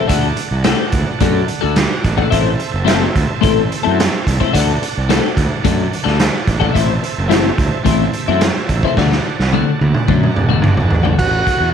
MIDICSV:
0, 0, Header, 1, 7, 480
1, 0, Start_track
1, 0, Tempo, 554017
1, 82, Time_signature, 4, 2, 24, 8
1, 10169, End_track
2, 0, Start_track
2, 0, Title_t, "Tonewheel organ"
2, 0, Program_c, 0, 16
2, 0, Note_on_c, 0, 81, 71
2, 98, Note_on_c, 0, 74, 58
2, 101, Note_on_c, 0, 78, 60
2, 1994, Note_off_c, 0, 74, 0
2, 1996, Note_off_c, 0, 78, 0
2, 2026, Note_on_c, 0, 76, 59
2, 2030, Note_on_c, 0, 72, 60
2, 3919, Note_off_c, 0, 76, 0
2, 3921, Note_off_c, 0, 72, 0
2, 3932, Note_on_c, 0, 74, 62
2, 3932, Note_on_c, 0, 78, 62
2, 5830, Note_off_c, 0, 74, 0
2, 5831, Note_off_c, 0, 78, 0
2, 5839, Note_on_c, 0, 76, 59
2, 5847, Note_on_c, 0, 72, 66
2, 7742, Note_off_c, 0, 76, 0
2, 7746, Note_off_c, 0, 72, 0
2, 7778, Note_on_c, 0, 74, 61
2, 7778, Note_on_c, 0, 78, 60
2, 9653, Note_off_c, 0, 81, 0
2, 9672, Note_off_c, 0, 74, 0
2, 9672, Note_off_c, 0, 78, 0
2, 10169, End_track
3, 0, Start_track
3, 0, Title_t, "Transistor combo organ"
3, 0, Program_c, 1, 18
3, 9690, Note_on_c, 1, 66, 82
3, 10135, Note_off_c, 1, 66, 0
3, 10169, End_track
4, 0, Start_track
4, 0, Title_t, "Clean electric guitar"
4, 0, Program_c, 2, 27
4, 66, Note_on_c, 2, 62, 92
4, 67, Note_on_c, 2, 57, 77
4, 70, Note_on_c, 2, 66, 87
4, 74, Note_on_c, 2, 69, 93
4, 230, Note_off_c, 2, 62, 0
4, 231, Note_off_c, 2, 57, 0
4, 232, Note_off_c, 2, 66, 0
4, 234, Note_off_c, 2, 69, 0
4, 558, Note_on_c, 2, 57, 94
4, 565, Note_on_c, 2, 66, 91
4, 566, Note_on_c, 2, 62, 94
4, 566, Note_on_c, 2, 69, 102
4, 717, Note_off_c, 2, 57, 0
4, 720, Note_off_c, 2, 66, 0
4, 720, Note_off_c, 2, 69, 0
4, 721, Note_off_c, 2, 62, 0
4, 1049, Note_on_c, 2, 57, 87
4, 1050, Note_on_c, 2, 62, 83
4, 1058, Note_on_c, 2, 66, 94
4, 1062, Note_on_c, 2, 69, 97
4, 1203, Note_off_c, 2, 57, 0
4, 1203, Note_off_c, 2, 62, 0
4, 1207, Note_off_c, 2, 66, 0
4, 1209, Note_off_c, 2, 69, 0
4, 1395, Note_on_c, 2, 69, 90
4, 1404, Note_on_c, 2, 66, 79
4, 1406, Note_on_c, 2, 62, 88
4, 1411, Note_on_c, 2, 57, 69
4, 1556, Note_off_c, 2, 69, 0
4, 1561, Note_off_c, 2, 66, 0
4, 1562, Note_off_c, 2, 62, 0
4, 1564, Note_off_c, 2, 57, 0
4, 1884, Note_on_c, 2, 69, 68
4, 1885, Note_on_c, 2, 62, 60
4, 1886, Note_on_c, 2, 66, 70
4, 1891, Note_on_c, 2, 57, 65
4, 1986, Note_off_c, 2, 57, 0
4, 1991, Note_off_c, 2, 62, 0
4, 1993, Note_off_c, 2, 69, 0
4, 1995, Note_off_c, 2, 66, 0
4, 1995, Note_on_c, 2, 60, 85
4, 1996, Note_on_c, 2, 57, 81
4, 1998, Note_on_c, 2, 64, 93
4, 2003, Note_on_c, 2, 69, 89
4, 2156, Note_off_c, 2, 60, 0
4, 2157, Note_off_c, 2, 57, 0
4, 2158, Note_off_c, 2, 64, 0
4, 2160, Note_off_c, 2, 69, 0
4, 2467, Note_on_c, 2, 57, 98
4, 2475, Note_on_c, 2, 60, 94
4, 2481, Note_on_c, 2, 69, 95
4, 2482, Note_on_c, 2, 64, 93
4, 2633, Note_off_c, 2, 57, 0
4, 2636, Note_off_c, 2, 60, 0
4, 2640, Note_off_c, 2, 64, 0
4, 2640, Note_off_c, 2, 69, 0
4, 2954, Note_on_c, 2, 57, 83
4, 2958, Note_on_c, 2, 60, 84
4, 2966, Note_on_c, 2, 64, 80
4, 2966, Note_on_c, 2, 69, 107
4, 3116, Note_off_c, 2, 57, 0
4, 3118, Note_off_c, 2, 60, 0
4, 3122, Note_off_c, 2, 69, 0
4, 3123, Note_off_c, 2, 64, 0
4, 3321, Note_on_c, 2, 69, 102
4, 3329, Note_on_c, 2, 57, 78
4, 3329, Note_on_c, 2, 64, 85
4, 3330, Note_on_c, 2, 60, 77
4, 3480, Note_off_c, 2, 69, 0
4, 3484, Note_off_c, 2, 57, 0
4, 3484, Note_off_c, 2, 64, 0
4, 3485, Note_off_c, 2, 60, 0
4, 3814, Note_on_c, 2, 60, 61
4, 3814, Note_on_c, 2, 69, 72
4, 3816, Note_on_c, 2, 64, 71
4, 3823, Note_on_c, 2, 57, 56
4, 3910, Note_off_c, 2, 57, 0
4, 3921, Note_off_c, 2, 69, 0
4, 3921, Note_on_c, 2, 57, 85
4, 3924, Note_off_c, 2, 60, 0
4, 3924, Note_off_c, 2, 64, 0
4, 3927, Note_on_c, 2, 62, 93
4, 3928, Note_on_c, 2, 66, 95
4, 3931, Note_on_c, 2, 69, 96
4, 4080, Note_off_c, 2, 57, 0
4, 4084, Note_off_c, 2, 62, 0
4, 4084, Note_off_c, 2, 66, 0
4, 4085, Note_off_c, 2, 69, 0
4, 4412, Note_on_c, 2, 57, 89
4, 4412, Note_on_c, 2, 62, 95
4, 4414, Note_on_c, 2, 66, 98
4, 4423, Note_on_c, 2, 69, 97
4, 4566, Note_off_c, 2, 57, 0
4, 4566, Note_off_c, 2, 62, 0
4, 4567, Note_off_c, 2, 66, 0
4, 4572, Note_off_c, 2, 69, 0
4, 4889, Note_on_c, 2, 57, 87
4, 4894, Note_on_c, 2, 62, 92
4, 4894, Note_on_c, 2, 66, 87
4, 4896, Note_on_c, 2, 69, 96
4, 5044, Note_off_c, 2, 57, 0
4, 5047, Note_off_c, 2, 62, 0
4, 5047, Note_off_c, 2, 66, 0
4, 5048, Note_off_c, 2, 69, 0
4, 5234, Note_on_c, 2, 69, 97
4, 5240, Note_on_c, 2, 66, 86
4, 5242, Note_on_c, 2, 57, 77
4, 5242, Note_on_c, 2, 62, 80
4, 5397, Note_off_c, 2, 69, 0
4, 5400, Note_off_c, 2, 66, 0
4, 5401, Note_off_c, 2, 57, 0
4, 5401, Note_off_c, 2, 62, 0
4, 5716, Note_on_c, 2, 69, 66
4, 5721, Note_on_c, 2, 66, 68
4, 5722, Note_on_c, 2, 62, 73
4, 5725, Note_on_c, 2, 57, 56
4, 5830, Note_on_c, 2, 52, 84
4, 5831, Note_off_c, 2, 57, 0
4, 5837, Note_off_c, 2, 62, 0
4, 5840, Note_on_c, 2, 60, 87
4, 5842, Note_off_c, 2, 66, 0
4, 5842, Note_off_c, 2, 69, 0
4, 5842, Note_on_c, 2, 57, 90
4, 5845, Note_on_c, 2, 64, 104
4, 5995, Note_off_c, 2, 52, 0
4, 6000, Note_off_c, 2, 60, 0
4, 6001, Note_off_c, 2, 57, 0
4, 6002, Note_off_c, 2, 64, 0
4, 6316, Note_on_c, 2, 52, 85
4, 6321, Note_on_c, 2, 57, 97
4, 6323, Note_on_c, 2, 64, 99
4, 6331, Note_on_c, 2, 60, 94
4, 6477, Note_off_c, 2, 52, 0
4, 6480, Note_off_c, 2, 57, 0
4, 6481, Note_off_c, 2, 64, 0
4, 6485, Note_off_c, 2, 60, 0
4, 6797, Note_on_c, 2, 52, 82
4, 6801, Note_on_c, 2, 57, 92
4, 6804, Note_on_c, 2, 60, 92
4, 6809, Note_on_c, 2, 64, 98
4, 6958, Note_off_c, 2, 52, 0
4, 6960, Note_off_c, 2, 57, 0
4, 6961, Note_off_c, 2, 60, 0
4, 6964, Note_off_c, 2, 64, 0
4, 7174, Note_on_c, 2, 64, 90
4, 7183, Note_on_c, 2, 57, 85
4, 7184, Note_on_c, 2, 60, 82
4, 7186, Note_on_c, 2, 52, 70
4, 7326, Note_off_c, 2, 64, 0
4, 7330, Note_off_c, 2, 57, 0
4, 7331, Note_off_c, 2, 60, 0
4, 7332, Note_off_c, 2, 52, 0
4, 7663, Note_on_c, 2, 64, 69
4, 7667, Note_on_c, 2, 60, 70
4, 7669, Note_on_c, 2, 52, 55
4, 7669, Note_on_c, 2, 57, 61
4, 7766, Note_off_c, 2, 52, 0
4, 7767, Note_off_c, 2, 57, 0
4, 7770, Note_on_c, 2, 50, 89
4, 7773, Note_off_c, 2, 60, 0
4, 7774, Note_off_c, 2, 64, 0
4, 7776, Note_on_c, 2, 62, 93
4, 7777, Note_on_c, 2, 57, 95
4, 7780, Note_on_c, 2, 66, 95
4, 7924, Note_off_c, 2, 50, 0
4, 7927, Note_off_c, 2, 57, 0
4, 7927, Note_off_c, 2, 62, 0
4, 7929, Note_off_c, 2, 66, 0
4, 8253, Note_on_c, 2, 50, 85
4, 8260, Note_on_c, 2, 57, 86
4, 8263, Note_on_c, 2, 66, 94
4, 8264, Note_on_c, 2, 62, 96
4, 8405, Note_off_c, 2, 50, 0
4, 8408, Note_off_c, 2, 57, 0
4, 8410, Note_off_c, 2, 62, 0
4, 8410, Note_off_c, 2, 66, 0
4, 8732, Note_on_c, 2, 50, 82
4, 8737, Note_on_c, 2, 57, 85
4, 8739, Note_on_c, 2, 66, 86
4, 8740, Note_on_c, 2, 62, 90
4, 8885, Note_off_c, 2, 50, 0
4, 8887, Note_off_c, 2, 57, 0
4, 8888, Note_off_c, 2, 66, 0
4, 8889, Note_off_c, 2, 62, 0
4, 9086, Note_on_c, 2, 66, 96
4, 9092, Note_on_c, 2, 50, 75
4, 9095, Note_on_c, 2, 57, 82
4, 9097, Note_on_c, 2, 62, 94
4, 9241, Note_off_c, 2, 66, 0
4, 9245, Note_off_c, 2, 50, 0
4, 9246, Note_off_c, 2, 57, 0
4, 9247, Note_off_c, 2, 62, 0
4, 9558, Note_on_c, 2, 66, 75
4, 9565, Note_on_c, 2, 50, 55
4, 9565, Note_on_c, 2, 57, 64
4, 9565, Note_on_c, 2, 62, 67
4, 9682, Note_off_c, 2, 66, 0
4, 9685, Note_off_c, 2, 50, 0
4, 9685, Note_off_c, 2, 57, 0
4, 9685, Note_off_c, 2, 62, 0
4, 10169, End_track
5, 0, Start_track
5, 0, Title_t, "Fingered electric bass"
5, 0, Program_c, 3, 33
5, 81, Note_on_c, 3, 38, 100
5, 269, Note_off_c, 3, 38, 0
5, 441, Note_on_c, 3, 36, 83
5, 629, Note_off_c, 3, 36, 0
5, 804, Note_on_c, 3, 38, 79
5, 898, Note_off_c, 3, 38, 0
5, 1049, Note_on_c, 3, 42, 72
5, 1234, Note_off_c, 3, 42, 0
5, 1417, Note_on_c, 3, 38, 82
5, 1600, Note_off_c, 3, 38, 0
5, 1770, Note_on_c, 3, 33, 76
5, 1955, Note_off_c, 3, 33, 0
5, 2012, Note_on_c, 3, 33, 90
5, 2197, Note_off_c, 3, 33, 0
5, 2371, Note_on_c, 3, 30, 86
5, 2650, Note_off_c, 3, 30, 0
5, 2732, Note_on_c, 3, 38, 75
5, 2823, Note_off_c, 3, 38, 0
5, 2976, Note_on_c, 3, 33, 80
5, 3159, Note_off_c, 3, 33, 0
5, 3347, Note_on_c, 3, 42, 83
5, 3526, Note_off_c, 3, 42, 0
5, 3695, Note_on_c, 3, 36, 71
5, 3785, Note_off_c, 3, 36, 0
5, 3942, Note_on_c, 3, 38, 87
5, 4123, Note_off_c, 3, 38, 0
5, 4309, Note_on_c, 3, 36, 81
5, 4488, Note_off_c, 3, 36, 0
5, 4650, Note_on_c, 3, 38, 89
5, 4743, Note_off_c, 3, 38, 0
5, 4889, Note_on_c, 3, 42, 75
5, 5075, Note_off_c, 3, 42, 0
5, 5251, Note_on_c, 3, 38, 78
5, 5436, Note_off_c, 3, 38, 0
5, 5609, Note_on_c, 3, 33, 79
5, 5795, Note_off_c, 3, 33, 0
5, 5853, Note_on_c, 3, 33, 88
5, 6038, Note_off_c, 3, 33, 0
5, 6220, Note_on_c, 3, 30, 79
5, 6495, Note_off_c, 3, 30, 0
5, 6570, Note_on_c, 3, 38, 80
5, 6662, Note_off_c, 3, 38, 0
5, 6806, Note_on_c, 3, 33, 90
5, 6993, Note_off_c, 3, 33, 0
5, 7174, Note_on_c, 3, 42, 88
5, 7358, Note_off_c, 3, 42, 0
5, 7525, Note_on_c, 3, 33, 82
5, 7619, Note_off_c, 3, 33, 0
5, 7767, Note_on_c, 3, 38, 98
5, 7953, Note_off_c, 3, 38, 0
5, 8138, Note_on_c, 3, 36, 75
5, 8320, Note_off_c, 3, 36, 0
5, 8500, Note_on_c, 3, 38, 88
5, 8588, Note_off_c, 3, 38, 0
5, 8733, Note_on_c, 3, 42, 74
5, 8917, Note_off_c, 3, 42, 0
5, 8985, Note_on_c, 3, 28, 84
5, 9192, Note_off_c, 3, 28, 0
5, 9226, Note_on_c, 3, 30, 83
5, 9433, Note_off_c, 3, 30, 0
5, 9467, Note_on_c, 3, 33, 79
5, 9674, Note_off_c, 3, 33, 0
5, 9692, Note_on_c, 3, 33, 83
5, 9877, Note_off_c, 3, 33, 0
5, 10053, Note_on_c, 3, 40, 82
5, 10169, Note_off_c, 3, 40, 0
5, 10169, End_track
6, 0, Start_track
6, 0, Title_t, "Muted clean electric guitar strokes"
6, 312, Note_on_c, 9, 29, 39
6, 399, Note_off_c, 9, 29, 0
6, 1647, Note_on_c, 9, 29, 37
6, 1734, Note_off_c, 9, 29, 0
6, 2243, Note_on_c, 9, 29, 42
6, 2330, Note_off_c, 9, 29, 0
6, 3558, Note_on_c, 9, 29, 45
6, 3645, Note_off_c, 9, 29, 0
6, 4175, Note_on_c, 9, 29, 46
6, 4262, Note_off_c, 9, 29, 0
6, 5485, Note_on_c, 9, 29, 47
6, 5572, Note_off_c, 9, 29, 0
6, 6086, Note_on_c, 9, 29, 42
6, 6172, Note_off_c, 9, 29, 0
6, 7423, Note_on_c, 9, 29, 47
6, 7509, Note_off_c, 9, 29, 0
6, 8021, Note_on_c, 9, 29, 47
6, 8108, Note_off_c, 9, 29, 0
6, 9327, Note_on_c, 9, 29, 47
6, 9414, Note_off_c, 9, 29, 0
6, 10169, End_track
7, 0, Start_track
7, 0, Title_t, "Drums"
7, 80, Note_on_c, 9, 42, 94
7, 82, Note_on_c, 9, 36, 86
7, 167, Note_off_c, 9, 42, 0
7, 168, Note_off_c, 9, 36, 0
7, 318, Note_on_c, 9, 42, 69
7, 405, Note_off_c, 9, 42, 0
7, 556, Note_on_c, 9, 42, 93
7, 560, Note_on_c, 9, 38, 106
7, 642, Note_off_c, 9, 42, 0
7, 647, Note_off_c, 9, 38, 0
7, 799, Note_on_c, 9, 42, 64
7, 803, Note_on_c, 9, 36, 77
7, 886, Note_off_c, 9, 42, 0
7, 890, Note_off_c, 9, 36, 0
7, 1043, Note_on_c, 9, 42, 82
7, 1046, Note_on_c, 9, 36, 108
7, 1130, Note_off_c, 9, 42, 0
7, 1132, Note_off_c, 9, 36, 0
7, 1284, Note_on_c, 9, 42, 65
7, 1371, Note_off_c, 9, 42, 0
7, 1526, Note_on_c, 9, 42, 86
7, 1530, Note_on_c, 9, 38, 116
7, 1612, Note_off_c, 9, 42, 0
7, 1617, Note_off_c, 9, 38, 0
7, 1770, Note_on_c, 9, 42, 57
7, 1771, Note_on_c, 9, 36, 73
7, 1857, Note_off_c, 9, 42, 0
7, 1858, Note_off_c, 9, 36, 0
7, 1892, Note_on_c, 9, 36, 84
7, 1979, Note_off_c, 9, 36, 0
7, 2010, Note_on_c, 9, 42, 82
7, 2012, Note_on_c, 9, 36, 92
7, 2097, Note_off_c, 9, 42, 0
7, 2099, Note_off_c, 9, 36, 0
7, 2250, Note_on_c, 9, 42, 63
7, 2336, Note_off_c, 9, 42, 0
7, 2491, Note_on_c, 9, 42, 84
7, 2496, Note_on_c, 9, 38, 116
7, 2578, Note_off_c, 9, 42, 0
7, 2582, Note_off_c, 9, 38, 0
7, 2735, Note_on_c, 9, 36, 74
7, 2736, Note_on_c, 9, 42, 61
7, 2821, Note_off_c, 9, 36, 0
7, 2823, Note_off_c, 9, 42, 0
7, 2973, Note_on_c, 9, 42, 77
7, 2976, Note_on_c, 9, 36, 96
7, 3060, Note_off_c, 9, 42, 0
7, 3063, Note_off_c, 9, 36, 0
7, 3223, Note_on_c, 9, 42, 68
7, 3310, Note_off_c, 9, 42, 0
7, 3465, Note_on_c, 9, 42, 94
7, 3469, Note_on_c, 9, 38, 107
7, 3552, Note_off_c, 9, 42, 0
7, 3556, Note_off_c, 9, 38, 0
7, 3698, Note_on_c, 9, 36, 75
7, 3705, Note_on_c, 9, 42, 64
7, 3785, Note_off_c, 9, 36, 0
7, 3791, Note_off_c, 9, 42, 0
7, 3819, Note_on_c, 9, 36, 82
7, 3905, Note_off_c, 9, 36, 0
7, 3938, Note_on_c, 9, 36, 96
7, 3941, Note_on_c, 9, 42, 91
7, 4025, Note_off_c, 9, 36, 0
7, 4028, Note_off_c, 9, 42, 0
7, 4182, Note_on_c, 9, 42, 68
7, 4268, Note_off_c, 9, 42, 0
7, 4418, Note_on_c, 9, 42, 88
7, 4422, Note_on_c, 9, 38, 102
7, 4504, Note_off_c, 9, 42, 0
7, 4509, Note_off_c, 9, 38, 0
7, 4652, Note_on_c, 9, 36, 77
7, 4655, Note_on_c, 9, 42, 58
7, 4739, Note_off_c, 9, 36, 0
7, 4742, Note_off_c, 9, 42, 0
7, 4892, Note_on_c, 9, 36, 101
7, 4893, Note_on_c, 9, 42, 95
7, 4979, Note_off_c, 9, 36, 0
7, 4979, Note_off_c, 9, 42, 0
7, 5140, Note_on_c, 9, 42, 64
7, 5227, Note_off_c, 9, 42, 0
7, 5260, Note_on_c, 9, 38, 32
7, 5346, Note_off_c, 9, 38, 0
7, 5368, Note_on_c, 9, 42, 94
7, 5372, Note_on_c, 9, 38, 107
7, 5455, Note_off_c, 9, 42, 0
7, 5459, Note_off_c, 9, 38, 0
7, 5610, Note_on_c, 9, 36, 75
7, 5610, Note_on_c, 9, 42, 56
7, 5696, Note_off_c, 9, 36, 0
7, 5696, Note_off_c, 9, 42, 0
7, 5731, Note_on_c, 9, 36, 77
7, 5817, Note_off_c, 9, 36, 0
7, 5851, Note_on_c, 9, 36, 94
7, 5857, Note_on_c, 9, 42, 85
7, 5938, Note_off_c, 9, 36, 0
7, 5944, Note_off_c, 9, 42, 0
7, 6097, Note_on_c, 9, 42, 56
7, 6184, Note_off_c, 9, 42, 0
7, 6333, Note_on_c, 9, 42, 87
7, 6337, Note_on_c, 9, 38, 110
7, 6419, Note_off_c, 9, 42, 0
7, 6424, Note_off_c, 9, 38, 0
7, 6570, Note_on_c, 9, 36, 84
7, 6576, Note_on_c, 9, 42, 54
7, 6657, Note_off_c, 9, 36, 0
7, 6663, Note_off_c, 9, 42, 0
7, 6807, Note_on_c, 9, 42, 81
7, 6809, Note_on_c, 9, 36, 93
7, 6893, Note_off_c, 9, 42, 0
7, 6895, Note_off_c, 9, 36, 0
7, 7048, Note_on_c, 9, 42, 59
7, 7135, Note_off_c, 9, 42, 0
7, 7287, Note_on_c, 9, 42, 92
7, 7292, Note_on_c, 9, 38, 111
7, 7374, Note_off_c, 9, 42, 0
7, 7378, Note_off_c, 9, 38, 0
7, 7529, Note_on_c, 9, 42, 65
7, 7530, Note_on_c, 9, 36, 83
7, 7616, Note_off_c, 9, 42, 0
7, 7617, Note_off_c, 9, 36, 0
7, 7651, Note_on_c, 9, 36, 83
7, 7738, Note_off_c, 9, 36, 0
7, 7773, Note_on_c, 9, 36, 97
7, 7777, Note_on_c, 9, 38, 55
7, 7859, Note_off_c, 9, 36, 0
7, 7864, Note_off_c, 9, 38, 0
7, 7901, Note_on_c, 9, 38, 47
7, 7988, Note_off_c, 9, 38, 0
7, 8143, Note_on_c, 9, 38, 50
7, 8229, Note_off_c, 9, 38, 0
7, 8261, Note_on_c, 9, 48, 69
7, 8348, Note_off_c, 9, 48, 0
7, 8502, Note_on_c, 9, 48, 72
7, 8588, Note_off_c, 9, 48, 0
7, 8616, Note_on_c, 9, 47, 63
7, 8702, Note_off_c, 9, 47, 0
7, 8736, Note_on_c, 9, 36, 101
7, 8823, Note_off_c, 9, 36, 0
7, 8866, Note_on_c, 9, 47, 67
7, 8952, Note_off_c, 9, 47, 0
7, 8978, Note_on_c, 9, 45, 79
7, 9065, Note_off_c, 9, 45, 0
7, 9216, Note_on_c, 9, 45, 98
7, 9302, Note_off_c, 9, 45, 0
7, 9334, Note_on_c, 9, 43, 82
7, 9420, Note_off_c, 9, 43, 0
7, 9448, Note_on_c, 9, 43, 90
7, 9535, Note_off_c, 9, 43, 0
7, 9573, Note_on_c, 9, 43, 89
7, 9660, Note_off_c, 9, 43, 0
7, 9694, Note_on_c, 9, 36, 88
7, 9696, Note_on_c, 9, 49, 82
7, 9781, Note_off_c, 9, 36, 0
7, 9782, Note_off_c, 9, 49, 0
7, 9936, Note_on_c, 9, 36, 68
7, 9937, Note_on_c, 9, 42, 57
7, 10023, Note_off_c, 9, 36, 0
7, 10024, Note_off_c, 9, 42, 0
7, 10169, End_track
0, 0, End_of_file